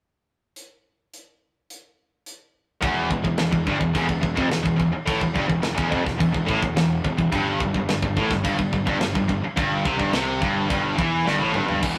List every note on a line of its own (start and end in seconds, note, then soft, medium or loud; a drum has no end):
0.56 closed hi-hat medium
1.14 closed hi-hat medium
1.70 closed hi-hat medium
2.26 closed hi-hat medium
2.82 3.08 E1 loud
2.82 3.09 E2 loud
2.82 kick loud
2.82 crash medium
3.11 3.24 E1 medium
3.11 3.23 E2 medium
3.11 kick medium
3.24 3.38 E1 medium
3.24 3.37 E2 medium
3.24 kick medium
3.38 3.51 E1 medium
3.38 3.50 E2 medium
3.38 snare loud
3.38 crash medium
3.51 3.66 E1 medium
3.51 3.66 E2 medium
3.51 kick medium
3.67 3.80 G1 medium
3.67 3.79 G2 loud
3.67 kick medium
3.80 3.94 E1 medium
3.80 3.94 E2 medium
3.80 kick medium
3.95 4.08 E1 medium
3.95 4.07 E2 loud
3.95 kick medium
3.95 crash medium
4.08 4.22 E1 medium
4.08 4.20 E2 medium
4.08 kick medium
4.21 4.36 E1 medium
4.21 4.35 E2 medium
4.21 kick medium
4.36 4.50 F1 medium
4.36 4.48 F2 loud
4.36 kick medium
4.49 4.65 E1 medium
4.49 4.62 E2 medium
4.49 snare loud
4.49 crash medium
4.63 4.78 E1 medium
4.63 4.75 E2 medium
4.63 kick loud
4.76 4.93 E1 medium
4.76 4.91 E2 medium
4.76 kick medium
4.92 muted distorted electric guitar stroke medium
4.92 muted picked electric bass stroke soft
5.06 5.20 A1 loud
5.06 5.20 A2 loud
5.06 kick loud
5.06 crash medium
5.21 5.35 E1 medium
5.21 5.34 E2 medium
5.21 kick medium
5.34 5.49 G1 medium
5.34 5.47 G2 loud
5.34 kick medium
5.48 5.63 E1 medium
5.48 5.61 E2 medium
5.48 kick medium
5.62 5.77 E1 medium
5.62 5.73 E2 medium
5.62 snare loud
5.62 crash medium
5.75 5.91 E1 medium
5.75 5.89 E2 loud
5.75 kick loud
5.89 6.05 F1 medium
5.89 6.04 F2 loud
5.89 kick medium
6.04 6.19 E1 medium
6.04 6.18 E2 medium
6.04 kick medium
6.04 snare soft
6.19 6.33 E1 medium
6.19 6.32 E2 medium
6.19 kick loud
6.19 crash medium
6.33 6.47 E1 medium
6.33 6.48 E2 medium
6.33 kick medium
6.47 6.62 A1 loud
6.47 6.61 A2 loud
6.47 kick medium
6.63 6.76 E1 medium
6.63 6.75 E2 medium
6.63 kick medium
6.76 7.03 E1 medium
6.76 6.99 E2 medium
6.76 snare loud
6.76 crash medium
7.04 7.17 E1 medium
7.04 7.16 E2 medium
7.04 kick medium
7.17 7.31 E1 medium
7.17 7.31 E2 medium
7.17 kick medium
7.32 7.58 G1 loud
7.32 7.59 G2 loud
7.32 kick loud
7.32 crash medium
7.60 7.74 G1 medium
7.60 7.75 G2 medium
7.60 kick loud
7.74 7.88 G1 medium
7.74 7.87 G2 medium
7.74 kick medium
7.89 8.02 G1 medium
7.89 8.02 G2 medium
7.89 snare loud
7.89 crash medium
8.02 8.16 G1 medium
8.02 8.17 G2 medium
8.02 kick medium
8.17 8.30 A1 medium
8.17 8.31 A2 loud
8.17 kick medium
8.30 8.44 G1 medium
8.30 8.42 G2 medium
8.30 kick medium
8.30 snare soft
8.44 8.58 G1 medium
8.44 8.57 G2 loud
8.44 kick loud
8.44 crash medium
8.58 8.72 G1 medium
8.58 8.72 G2 medium
8.58 kick medium
8.73 8.86 G1 medium
8.73 8.86 G2 medium
8.73 kick medium
8.87 9.00 G1 medium
8.87 8.99 G2 loud
8.87 kick medium
9.00 9.14 G1 medium
9.00 9.14 G2 medium
9.00 snare loud
9.00 crash medium
9.15 9.28 G1 medium
9.15 9.27 G2 medium
9.15 kick medium
9.28 9.42 G1 medium
9.28 9.43 G2 medium
9.28 kick medium
9.43 muted picked electric bass stroke soft
9.43 muted distorted electric guitar stroke medium
9.57 9.84 G1 loud
9.57 9.85 G2 loud
9.57 kick loud
9.57 crash medium
9.85 9.99 C2 medium
9.85 9.99 C3 medium
9.85 kick loud
9.97 10.12 G1 medium
9.97 10.12 G2 loud
9.97 kick medium
10.12 10.39 C2 loud
10.12 10.40 C3 loud
10.12 snare loud
10.12 crash medium
10.41 10.68 G1 medium
10.41 10.69 G2 loud
10.41 kick loud
10.70 10.97 G1 medium
10.70 10.97 G2 loud
10.70 kick loud
10.70 crash medium
10.98 11.25 E2 loud
10.98 11.25 E3 loud
10.98 kick loud
11.26 11.39 G1 medium
11.26 11.39 G2 loud
11.26 snare medium
11.38 11.53 A1 medium
11.38 11.53 A2 loud
11.52 11.67 G1 medium
11.52 11.66 G2 medium
11.52 mid tom medium
11.67 11.82 G1 medium
11.67 11.80 G2 loud
11.67 floor tom medium
11.81 11.98 E1 medium
11.81 11.93 E2 medium
11.81 11.93 B2 medium
11.81 11.95 E3 medium
11.81 kick loud
11.81 crash loud
11.94 11.98 E2 medium
11.94 11.98 B2 medium